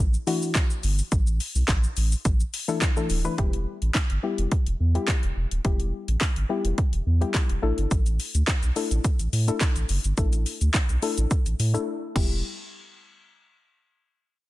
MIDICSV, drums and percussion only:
0, 0, Header, 1, 2, 480
1, 0, Start_track
1, 0, Key_signature, 1, "minor"
1, 0, Tempo, 566038
1, 949, Time_signature, 4, 2, 24, 8
1, 12288, End_track
2, 0, Start_track
2, 0, Title_t, "Drums"
2, 116, Note_on_c, 9, 82, 56
2, 201, Note_off_c, 9, 82, 0
2, 232, Note_on_c, 9, 46, 84
2, 232, Note_on_c, 9, 82, 62
2, 316, Note_off_c, 9, 46, 0
2, 316, Note_off_c, 9, 82, 0
2, 358, Note_on_c, 9, 82, 66
2, 443, Note_off_c, 9, 82, 0
2, 464, Note_on_c, 9, 38, 99
2, 468, Note_on_c, 9, 42, 73
2, 468, Note_on_c, 9, 82, 74
2, 469, Note_on_c, 9, 36, 118
2, 470, Note_on_c, 9, 39, 122
2, 549, Note_off_c, 9, 38, 0
2, 553, Note_off_c, 9, 42, 0
2, 553, Note_off_c, 9, 82, 0
2, 554, Note_off_c, 9, 36, 0
2, 555, Note_off_c, 9, 39, 0
2, 594, Note_on_c, 9, 82, 57
2, 679, Note_off_c, 9, 82, 0
2, 707, Note_on_c, 9, 46, 72
2, 707, Note_on_c, 9, 82, 53
2, 791, Note_off_c, 9, 46, 0
2, 791, Note_off_c, 9, 82, 0
2, 836, Note_on_c, 9, 82, 79
2, 920, Note_off_c, 9, 82, 0
2, 948, Note_on_c, 9, 42, 73
2, 948, Note_on_c, 9, 82, 73
2, 949, Note_on_c, 9, 36, 119
2, 1033, Note_off_c, 9, 42, 0
2, 1033, Note_off_c, 9, 82, 0
2, 1034, Note_off_c, 9, 36, 0
2, 1075, Note_on_c, 9, 82, 56
2, 1160, Note_off_c, 9, 82, 0
2, 1190, Note_on_c, 9, 46, 69
2, 1190, Note_on_c, 9, 82, 51
2, 1275, Note_off_c, 9, 46, 0
2, 1275, Note_off_c, 9, 82, 0
2, 1316, Note_on_c, 9, 82, 78
2, 1401, Note_off_c, 9, 82, 0
2, 1423, Note_on_c, 9, 38, 89
2, 1429, Note_on_c, 9, 36, 108
2, 1429, Note_on_c, 9, 39, 109
2, 1430, Note_on_c, 9, 42, 72
2, 1430, Note_on_c, 9, 82, 70
2, 1508, Note_off_c, 9, 38, 0
2, 1514, Note_off_c, 9, 36, 0
2, 1514, Note_off_c, 9, 39, 0
2, 1515, Note_off_c, 9, 42, 0
2, 1515, Note_off_c, 9, 82, 0
2, 1555, Note_on_c, 9, 82, 57
2, 1640, Note_off_c, 9, 82, 0
2, 1667, Note_on_c, 9, 46, 73
2, 1667, Note_on_c, 9, 82, 56
2, 1752, Note_off_c, 9, 46, 0
2, 1752, Note_off_c, 9, 82, 0
2, 1797, Note_on_c, 9, 82, 77
2, 1881, Note_off_c, 9, 82, 0
2, 1909, Note_on_c, 9, 42, 78
2, 1909, Note_on_c, 9, 82, 75
2, 1910, Note_on_c, 9, 36, 115
2, 1994, Note_off_c, 9, 42, 0
2, 1994, Note_off_c, 9, 82, 0
2, 1995, Note_off_c, 9, 36, 0
2, 2036, Note_on_c, 9, 82, 56
2, 2121, Note_off_c, 9, 82, 0
2, 2151, Note_on_c, 9, 46, 86
2, 2151, Note_on_c, 9, 82, 60
2, 2236, Note_off_c, 9, 46, 0
2, 2236, Note_off_c, 9, 82, 0
2, 2278, Note_on_c, 9, 82, 69
2, 2363, Note_off_c, 9, 82, 0
2, 2384, Note_on_c, 9, 38, 95
2, 2388, Note_on_c, 9, 42, 74
2, 2388, Note_on_c, 9, 82, 72
2, 2389, Note_on_c, 9, 36, 113
2, 2390, Note_on_c, 9, 39, 125
2, 2469, Note_off_c, 9, 38, 0
2, 2473, Note_off_c, 9, 42, 0
2, 2473, Note_off_c, 9, 82, 0
2, 2474, Note_off_c, 9, 36, 0
2, 2475, Note_off_c, 9, 39, 0
2, 2514, Note_on_c, 9, 82, 57
2, 2599, Note_off_c, 9, 82, 0
2, 2626, Note_on_c, 9, 46, 72
2, 2626, Note_on_c, 9, 82, 51
2, 2711, Note_off_c, 9, 46, 0
2, 2711, Note_off_c, 9, 82, 0
2, 2754, Note_on_c, 9, 82, 77
2, 2839, Note_off_c, 9, 82, 0
2, 2868, Note_on_c, 9, 42, 72
2, 2870, Note_on_c, 9, 36, 115
2, 2953, Note_off_c, 9, 42, 0
2, 2954, Note_off_c, 9, 36, 0
2, 2996, Note_on_c, 9, 42, 53
2, 3081, Note_off_c, 9, 42, 0
2, 3238, Note_on_c, 9, 42, 51
2, 3323, Note_off_c, 9, 42, 0
2, 3344, Note_on_c, 9, 38, 84
2, 3349, Note_on_c, 9, 36, 103
2, 3350, Note_on_c, 9, 39, 109
2, 3351, Note_on_c, 9, 42, 67
2, 3428, Note_off_c, 9, 38, 0
2, 3434, Note_off_c, 9, 36, 0
2, 3435, Note_off_c, 9, 39, 0
2, 3435, Note_off_c, 9, 42, 0
2, 3475, Note_on_c, 9, 42, 53
2, 3560, Note_off_c, 9, 42, 0
2, 3717, Note_on_c, 9, 42, 51
2, 3801, Note_off_c, 9, 42, 0
2, 3829, Note_on_c, 9, 42, 75
2, 3830, Note_on_c, 9, 36, 108
2, 3913, Note_off_c, 9, 42, 0
2, 3915, Note_off_c, 9, 36, 0
2, 3956, Note_on_c, 9, 42, 53
2, 4041, Note_off_c, 9, 42, 0
2, 4198, Note_on_c, 9, 42, 46
2, 4283, Note_off_c, 9, 42, 0
2, 4303, Note_on_c, 9, 38, 89
2, 4308, Note_on_c, 9, 42, 71
2, 4309, Note_on_c, 9, 36, 111
2, 4309, Note_on_c, 9, 39, 116
2, 4388, Note_off_c, 9, 38, 0
2, 4392, Note_off_c, 9, 42, 0
2, 4394, Note_off_c, 9, 36, 0
2, 4394, Note_off_c, 9, 39, 0
2, 4435, Note_on_c, 9, 42, 55
2, 4520, Note_off_c, 9, 42, 0
2, 4676, Note_on_c, 9, 42, 54
2, 4761, Note_off_c, 9, 42, 0
2, 4788, Note_on_c, 9, 42, 72
2, 4789, Note_on_c, 9, 36, 117
2, 4873, Note_off_c, 9, 42, 0
2, 4874, Note_off_c, 9, 36, 0
2, 4915, Note_on_c, 9, 42, 54
2, 5000, Note_off_c, 9, 42, 0
2, 5157, Note_on_c, 9, 42, 53
2, 5242, Note_off_c, 9, 42, 0
2, 5263, Note_on_c, 9, 38, 85
2, 5269, Note_on_c, 9, 36, 99
2, 5269, Note_on_c, 9, 39, 106
2, 5270, Note_on_c, 9, 42, 70
2, 5348, Note_off_c, 9, 38, 0
2, 5353, Note_off_c, 9, 36, 0
2, 5354, Note_off_c, 9, 39, 0
2, 5355, Note_off_c, 9, 42, 0
2, 5395, Note_on_c, 9, 42, 54
2, 5480, Note_off_c, 9, 42, 0
2, 5636, Note_on_c, 9, 42, 53
2, 5721, Note_off_c, 9, 42, 0
2, 5749, Note_on_c, 9, 42, 73
2, 5750, Note_on_c, 9, 36, 105
2, 5833, Note_off_c, 9, 42, 0
2, 5834, Note_off_c, 9, 36, 0
2, 5876, Note_on_c, 9, 42, 52
2, 5961, Note_off_c, 9, 42, 0
2, 6118, Note_on_c, 9, 42, 46
2, 6203, Note_off_c, 9, 42, 0
2, 6223, Note_on_c, 9, 38, 95
2, 6228, Note_on_c, 9, 42, 73
2, 6229, Note_on_c, 9, 36, 112
2, 6230, Note_on_c, 9, 39, 115
2, 6308, Note_off_c, 9, 38, 0
2, 6313, Note_off_c, 9, 42, 0
2, 6314, Note_off_c, 9, 36, 0
2, 6314, Note_off_c, 9, 39, 0
2, 6355, Note_on_c, 9, 42, 54
2, 6440, Note_off_c, 9, 42, 0
2, 6596, Note_on_c, 9, 42, 54
2, 6681, Note_off_c, 9, 42, 0
2, 6709, Note_on_c, 9, 36, 110
2, 6709, Note_on_c, 9, 42, 71
2, 6709, Note_on_c, 9, 82, 73
2, 6794, Note_off_c, 9, 36, 0
2, 6794, Note_off_c, 9, 42, 0
2, 6794, Note_off_c, 9, 82, 0
2, 6835, Note_on_c, 9, 42, 55
2, 6835, Note_on_c, 9, 82, 54
2, 6920, Note_off_c, 9, 42, 0
2, 6920, Note_off_c, 9, 82, 0
2, 6951, Note_on_c, 9, 46, 67
2, 6951, Note_on_c, 9, 82, 50
2, 7035, Note_off_c, 9, 46, 0
2, 7035, Note_off_c, 9, 82, 0
2, 7078, Note_on_c, 9, 42, 53
2, 7078, Note_on_c, 9, 82, 75
2, 7163, Note_off_c, 9, 42, 0
2, 7163, Note_off_c, 9, 82, 0
2, 7184, Note_on_c, 9, 38, 90
2, 7189, Note_on_c, 9, 36, 104
2, 7190, Note_on_c, 9, 39, 115
2, 7191, Note_on_c, 9, 42, 66
2, 7191, Note_on_c, 9, 82, 68
2, 7269, Note_off_c, 9, 38, 0
2, 7274, Note_off_c, 9, 36, 0
2, 7275, Note_off_c, 9, 39, 0
2, 7276, Note_off_c, 9, 42, 0
2, 7276, Note_off_c, 9, 82, 0
2, 7316, Note_on_c, 9, 42, 55
2, 7316, Note_on_c, 9, 82, 55
2, 7401, Note_off_c, 9, 42, 0
2, 7401, Note_off_c, 9, 82, 0
2, 7429, Note_on_c, 9, 46, 71
2, 7429, Note_on_c, 9, 82, 54
2, 7514, Note_off_c, 9, 46, 0
2, 7514, Note_off_c, 9, 82, 0
2, 7558, Note_on_c, 9, 42, 56
2, 7558, Note_on_c, 9, 82, 79
2, 7642, Note_off_c, 9, 42, 0
2, 7642, Note_off_c, 9, 82, 0
2, 7669, Note_on_c, 9, 42, 73
2, 7669, Note_on_c, 9, 82, 75
2, 7670, Note_on_c, 9, 36, 112
2, 7754, Note_off_c, 9, 42, 0
2, 7754, Note_off_c, 9, 82, 0
2, 7755, Note_off_c, 9, 36, 0
2, 7797, Note_on_c, 9, 42, 54
2, 7797, Note_on_c, 9, 82, 54
2, 7882, Note_off_c, 9, 42, 0
2, 7882, Note_off_c, 9, 82, 0
2, 7912, Note_on_c, 9, 46, 85
2, 7912, Note_on_c, 9, 82, 59
2, 7997, Note_off_c, 9, 46, 0
2, 7997, Note_off_c, 9, 82, 0
2, 8039, Note_on_c, 9, 42, 49
2, 8039, Note_on_c, 9, 82, 65
2, 8123, Note_off_c, 9, 42, 0
2, 8123, Note_off_c, 9, 82, 0
2, 8144, Note_on_c, 9, 38, 94
2, 8148, Note_on_c, 9, 42, 74
2, 8148, Note_on_c, 9, 82, 72
2, 8149, Note_on_c, 9, 36, 113
2, 8150, Note_on_c, 9, 39, 123
2, 8228, Note_off_c, 9, 38, 0
2, 8233, Note_off_c, 9, 42, 0
2, 8233, Note_off_c, 9, 82, 0
2, 8234, Note_off_c, 9, 36, 0
2, 8235, Note_off_c, 9, 39, 0
2, 8274, Note_on_c, 9, 42, 55
2, 8274, Note_on_c, 9, 82, 55
2, 8359, Note_off_c, 9, 42, 0
2, 8359, Note_off_c, 9, 82, 0
2, 8387, Note_on_c, 9, 46, 73
2, 8387, Note_on_c, 9, 82, 50
2, 8472, Note_off_c, 9, 46, 0
2, 8472, Note_off_c, 9, 82, 0
2, 8516, Note_on_c, 9, 42, 58
2, 8516, Note_on_c, 9, 82, 77
2, 8601, Note_off_c, 9, 42, 0
2, 8601, Note_off_c, 9, 82, 0
2, 8629, Note_on_c, 9, 42, 76
2, 8629, Note_on_c, 9, 82, 74
2, 8630, Note_on_c, 9, 36, 111
2, 8713, Note_off_c, 9, 42, 0
2, 8713, Note_off_c, 9, 82, 0
2, 8714, Note_off_c, 9, 36, 0
2, 8757, Note_on_c, 9, 42, 56
2, 8757, Note_on_c, 9, 82, 54
2, 8841, Note_off_c, 9, 42, 0
2, 8841, Note_off_c, 9, 82, 0
2, 8871, Note_on_c, 9, 46, 70
2, 8871, Note_on_c, 9, 82, 50
2, 8956, Note_off_c, 9, 46, 0
2, 8956, Note_off_c, 9, 82, 0
2, 8998, Note_on_c, 9, 42, 51
2, 8998, Note_on_c, 9, 82, 74
2, 9083, Note_off_c, 9, 42, 0
2, 9083, Note_off_c, 9, 82, 0
2, 9105, Note_on_c, 9, 38, 90
2, 9109, Note_on_c, 9, 36, 111
2, 9111, Note_on_c, 9, 39, 111
2, 9112, Note_on_c, 9, 42, 73
2, 9112, Note_on_c, 9, 82, 71
2, 9190, Note_off_c, 9, 38, 0
2, 9194, Note_off_c, 9, 36, 0
2, 9196, Note_off_c, 9, 39, 0
2, 9197, Note_off_c, 9, 42, 0
2, 9197, Note_off_c, 9, 82, 0
2, 9236, Note_on_c, 9, 42, 53
2, 9236, Note_on_c, 9, 82, 55
2, 9321, Note_off_c, 9, 42, 0
2, 9321, Note_off_c, 9, 82, 0
2, 9349, Note_on_c, 9, 46, 76
2, 9349, Note_on_c, 9, 82, 51
2, 9433, Note_off_c, 9, 46, 0
2, 9433, Note_off_c, 9, 82, 0
2, 9477, Note_on_c, 9, 42, 53
2, 9477, Note_on_c, 9, 82, 79
2, 9562, Note_off_c, 9, 42, 0
2, 9562, Note_off_c, 9, 82, 0
2, 9590, Note_on_c, 9, 36, 109
2, 9590, Note_on_c, 9, 42, 75
2, 9590, Note_on_c, 9, 82, 73
2, 9675, Note_off_c, 9, 36, 0
2, 9675, Note_off_c, 9, 42, 0
2, 9675, Note_off_c, 9, 82, 0
2, 9718, Note_on_c, 9, 42, 55
2, 9718, Note_on_c, 9, 82, 54
2, 9803, Note_off_c, 9, 42, 0
2, 9803, Note_off_c, 9, 82, 0
2, 9834, Note_on_c, 9, 46, 85
2, 9834, Note_on_c, 9, 82, 58
2, 9919, Note_off_c, 9, 46, 0
2, 9919, Note_off_c, 9, 82, 0
2, 9961, Note_on_c, 9, 42, 48
2, 9961, Note_on_c, 9, 82, 68
2, 10046, Note_off_c, 9, 42, 0
2, 10046, Note_off_c, 9, 82, 0
2, 10309, Note_on_c, 9, 36, 108
2, 10309, Note_on_c, 9, 49, 86
2, 10394, Note_off_c, 9, 36, 0
2, 10394, Note_off_c, 9, 49, 0
2, 12288, End_track
0, 0, End_of_file